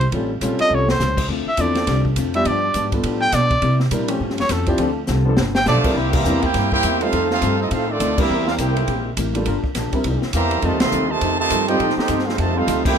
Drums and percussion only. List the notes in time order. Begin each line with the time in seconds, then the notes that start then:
0.01 ride
0.12 kick, ride
0.41 kick, hi-hat pedal, ride
0.59 ride
0.89 snare
1.00 snare, hi-hat pedal
1.17 kick, crash
1.29 kick
1.57 kick, hi-hat pedal, ride
1.75 snare, ride
1.87 kick, snare, ride
2.05 kick
2.16 kick, hi-hat pedal, ride
2.34 ride
2.45 kick, ride
2.74 kick, hi-hat pedal, ride
2.92 kick, ride
3.03 ride
3.32 kick, snare, hi-hat pedal, ride
3.51 kick, ride
3.62 kick, ride
3.80 snare
3.91 kick, hi-hat pedal, ride
4.08 ride
4.20 kick
4.30 snare
4.38 snare, ride
4.49 kick, snare, hi-hat pedal, ride
4.66 kick, ride
4.78 ride
5.07 snare, hi-hat pedal
5.37 snare
5.55 snare
5.66 snare, hi-hat pedal
5.84 kick, crash
6.13 kick, crash
6.25 hi-hat pedal
6.42 kick, ride
6.54 kick, snare, ride
6.72 kick
6.83 kick, hi-hat pedal, ride
7.01 ride
7.13 kick, ride
7.30 snare
7.42 kick, hi-hat pedal, ride
7.71 kick, ride
8.00 kick, hi-hat pedal, ride
8.18 kick, crash
8.47 snare
8.58 kick, hi-hat pedal, ride
8.77 ride
8.88 kick, ride
9.17 kick, hi-hat pedal, ride
9.35 ride
9.46 kick, ride
9.64 kick
9.75 snare, hi-hat pedal, ride
9.93 kick, ride
10.04 kick, ride
10.22 snare
10.33 kick, hi-hat pedal, ride
10.51 ride
10.62 kick, ride
10.80 snare, ride
10.92 hi-hat pedal
11.21 kick, ride
11.50 kick, hi-hat pedal, ride
11.68 ride
11.80 kick, ride
11.90 snare
11.99 snare
12.08 kick, hi-hat pedal, ride
12.19 snare
12.29 snare
12.38 kick, ride
12.68 kick, hi-hat pedal, ride
12.85 kick, crash